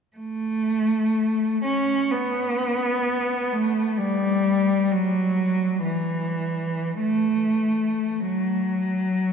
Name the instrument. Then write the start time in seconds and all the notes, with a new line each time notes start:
cello
0.16 A3
1.64 C#4
2.11 B3
3.52 A3
3.97 G3
4.91 F#3
5.84 E3
7.00 A3
8.27 F#3